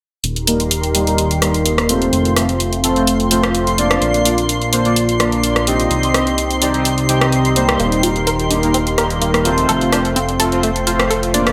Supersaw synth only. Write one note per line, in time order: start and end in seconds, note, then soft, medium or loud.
0.48 0.54 G3 medium
0.48 0.54 A#3 medium
0.48 0.54 D#4 medium
0.48 0.54 A#4 medium
0.95 1.01 G3 medium
0.95 1.01 A#3 medium
0.95 1.01 D#4 medium
0.95 1.01 G4 medium
1.07 1.13 G3 medium
1.07 1.13 A#3 medium
1.07 1.13 D#4 medium
1.07 1.13 A#4 medium
1.42 1.87 G3 medium
1.42 1.87 A#3 medium
1.42 1.87 D#4 medium
1.42 1.87 A#4 medium
1.89 2.34 A3 medium
1.89 2.34 C4 medium
1.89 2.34 F4 medium
1.89 2.34 C5 medium
2.37 2.43 A3 medium
2.37 2.43 C4 medium
2.37 2.43 F4 medium
2.37 2.43 C5 medium
2.84 2.90 A3 medium
2.84 2.90 C4 medium
2.84 2.90 F4 medium
2.84 2.90 A4 medium
2.96 3.02 A3 medium
2.96 3.02 C4 medium
2.96 3.02 F4 medium
2.96 3.02 C5 loud
3.31 3.76 A3 medium
3.31 3.76 C4 medium
3.31 3.76 F4 medium
3.31 3.76 C5 medium
3.78 4.23 A#3 medium
3.78 4.23 D4 medium
3.78 4.23 F4 medium
3.78 4.23 D5 medium
4.25 4.32 A#3 medium
4.25 4.32 D4 medium
4.25 4.32 F4 medium
4.25 4.32 D5 medium
4.73 4.79 A#3 medium
4.73 4.79 D4 medium
4.73 4.79 F4 medium
4.73 4.79 C5 medium
4.85 4.91 A#3 medium
4.85 4.91 D4 medium
4.85 4.91 F4 medium
4.85 4.91 D5 loud
5.20 5.65 A#3 medium
5.20 5.65 D4 medium
5.20 5.65 F4 medium
5.20 5.65 D5 medium
5.67 6.12 C4 medium
5.67 6.12 D#4 medium
5.67 6.12 G4 medium
5.67 6.12 D#5 medium
6.14 6.21 C4 medium
6.14 6.21 D#4 medium
6.14 6.21 G4 medium
6.14 6.21 D#5 medium
6.62 6.68 C4 medium
6.62 6.68 D#4 medium
6.62 6.68 G4 medium
6.62 6.68 D5 medium
6.74 6.80 C4 medium
6.74 6.80 D#4 medium
6.74 6.80 G4 medium
6.74 6.80 D#5 loud
7.09 7.19 C4 medium
7.09 7.19 D#4 medium
7.09 7.19 G4 medium
7.09 7.19 G5 loud
7.22 7.54 C4 medium
7.22 7.54 D#4 medium
7.22 7.54 G4 medium
7.22 7.54 D#5 medium
7.56 8.01 G3 medium
7.56 8.01 A#3 medium
7.56 8.01 D#4 medium
7.56 8.01 C5 medium
8.03 8.10 G3 medium
8.03 8.10 A#3 medium
8.03 8.10 D#4 medium
8.03 8.10 A#4 medium
8.51 8.57 G3 medium
8.51 8.57 A#3 medium
8.51 8.57 D#4 medium
8.51 8.57 G4 medium
8.63 8.69 G3 medium
8.63 8.69 A#3 medium
8.63 8.69 D#4 medium
8.63 8.69 A#4 loud
8.98 9.43 G3 medium
8.98 9.43 A#3 medium
8.98 9.43 D#4 medium
8.98 9.43 A#4 medium
9.45 9.90 A3 medium
9.45 9.90 C4 medium
9.45 9.90 F4 medium
9.45 9.90 C5 medium
9.92 9.99 A3 medium
9.92 9.99 C4 medium
9.92 9.99 F4 medium
9.92 9.99 C5 medium
10.40 10.46 A3 medium
10.40 10.46 C4 medium
10.40 10.46 F4 medium
10.40 10.46 A4 medium
10.52 10.58 A3 medium
10.52 10.58 C4 medium
10.52 10.58 F4 medium
10.52 10.58 C5 loud
10.87 11.31 A3 medium
10.87 11.31 C4 medium
10.87 11.31 F4 medium
10.87 11.31 C5 medium
11.34 11.52 A#3 medium
11.34 11.52 D4 medium
11.34 11.52 F4 medium
11.34 11.52 D5 medium